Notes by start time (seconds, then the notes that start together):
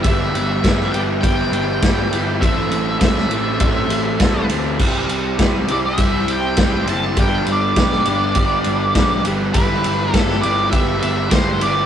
0.02 G1 G3 B3 E4 G4 E5, kick, ride
0.34 G1, ride
0.63 G1 G3 B3 E4 G4, kick, snare, ride
0.81 snare
0.91 G1 G3 B3 E4 G4 G5, ride
1.21 G1 G3 B3 E4 G4 G5, kick, ride
1.51 G1, ride
1.81 G1 G3 B3 E4 G4, kick, snare, ride
2.11 G1 G3 B3 E4 G4, ride
2.41 A1 A2 E3 A3 C4 E4 A4 E5, kick, ride
2.71 A1, ride
3.00 C2 A2 E3 A3 C4 E4 A4 E5, kick, snare, ride
3.18 snare
3.28 A1 A2 E3 C4, ride
3.32 A3 E4 A4
3.59 A1 A2 E3 C4 E4 A4, kick, ride
3.64 A3
3.90 A1, ride
4.19 C2 A2 E3 C4 E4 A4, kick, snare, ride
4.23 A3
4.48 D2 A2 E3 A3 C4 E4 A4, ride
4.79 C2 C3 G3 C4 E4 G4 E5 C6, kick, crash
5.07 C2, ride
5.38 C2 C3 G3 C4 E4 G4, kick, snare, ride
5.68 C2 C3 G3 C4 E4 G4, ride
5.72 D5
5.86 E5
5.97 C2 C3 G3 C4 E4 G4, kick, ride
6.26 C2, ride
6.31 G5
6.57 C2 C3 G3 C4 E4 G4, kick, snare, ride
6.87 F#1 C3 G3 C4 E4 G4 A5, ride
7.16 G1 G2 D3 G3 B3 D4 G4 D5 G5 B5, kick, ride
7.46 G1, ride
7.52 D5
7.76 B1 G2 D3 G3 B3 D4 G4, kick, snare, ride
7.92 snare
8.05 G1 G2 D3 G3 B3 D4 G4, ride
8.35 G1 G2 D3 G3 B3 D4 G4, kick, ride
8.64 G1, ride
8.94 B1 G2 D3 G3 B3 D4 G4, kick, snare, ride
9.23 G1 G3 B3 E4 G4 E5 B5, ride
9.53 G1 G3 B3 E4 G4 B4, kick, ride
9.84 G1, ride
10.12 G1 G3 B3 E4 G4 A4, kick, snare, ride
10.30 snare
10.41 G1 G3 B3 E4 G4 D5, ride
10.71 G1 G3 B3 E4 G4 E5, kick, ride
11.01 G1 E5, ride
11.30 G1 G3 B3 E4 G4 C5, kick, snare, ride
11.58 G1 G3 B3 E4 G4 D5, ride
11.63 G3 B3 E4 G4